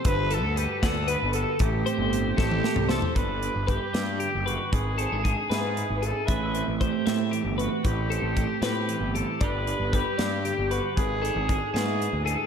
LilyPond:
<<
  \new Staff \with { instrumentName = "Clean electric guitar" } { \time 6/8 \key g \major \tempo 4. = 77 b'8 a'8 b'8 fis''8 b'8 a'8~ | a'8 c''4 a'4 c''8 | d''4 b'8 d''8 g'8 b'8~ | b'8 a'8 gis'8 b'4 gis'8 |
e''4 c''8 e''8 g'8 b'8~ | b'8 a'8 g'8 b'4 g'8 | d''4 b'8 d''8 g'8 b'8~ | b'8 a'8 gis'8 b'4 gis'8 | }
  \new Staff \with { instrumentName = "Trumpet" } { \time 6/8 \key g \major b'8 a'8 g'8 a'8 b'8 a'8 | g'4. g'4 a'8 | b'4 g'4. fis'8 | gis'4. gis'4 a'8 |
b'4 g'4 r8 fis'8 | g'4. g'4 a'8 | b'4 g'4. fis'8 | gis'4. gis'4 a'8 | }
  \new Staff \with { instrumentName = "Clean electric guitar" } { \time 6/8 \key g \major << { a'8 fis'8 fis'4 fis'8 fis'8 | r8 c'8 c'4 g'8 a'16 c''16 | r8 d'4 d'4. | r8 c'16 d'8. e'4.~ |
e'8 c'4 c'4.~ | c'8 c'4 c'4. | <g d' g'>8 d'4 d'4. | r8 d'4 e'4. | } \\ { g,4. d4. | a,4. e4. | g,4 g4 d4 | gis,4 gis4 gis,4 |
a,4 a4 e4 | a,4 a4 e4 | g,4 g4 d4 | gis,4 gis4 gis,4 | } >> }
  \new Staff \with { instrumentName = "Picked electric bass" } { \clef bass \time 6/8 \key g \major g,,8. d,8 r16 d,8. g,,8 r16 | a,,8 r16 g,,8. a,,8 r16 c,8 r16 | g,,8. g,,8 r16 g,8. fis,,8 r16 | gis,,8. gis,,8 r16 gis,8. gis,,8 r16 |
a,,8. a,,8 r16 a,8. g,,8 r16 | a,,8. a,,8 r16 a,8. g,,8 r16 | g,,8. g,,8 r16 g,8. g,,8 r16 | gis,,8. gis,,8 r16 gis,8. d,8 r16 | }
  \new DrumStaff \with { instrumentName = "Drums" } \drummode { \time 6/8 <hh bd>8 hh8 hh8 <hh bd sn>8 hh8 hh8 | <hh bd>8 hh8 hh8 <bd sn>16 tommh16 sn16 toml16 sn16 tomfh16 | <hh bd>8 hh8 <hh bd>8 <hh sn>8 hh8 hh8 | <hh bd>8 hh8 <hh bd>8 <hh sn>8 hh8 hh8 |
<hh bd>8 hh8 <hh bd>8 <hh sn>8 hh8 hh8 | <hh bd>8 hh8 <hh bd>8 <hh sn>8 hh8 hh8 | <hh bd>8 hh8 <hh bd>8 <hh sn>8 hh8 hh8 | <hh bd>8 hh8 <hh bd>8 <hh sn>8 hh8 hh8 | }
>>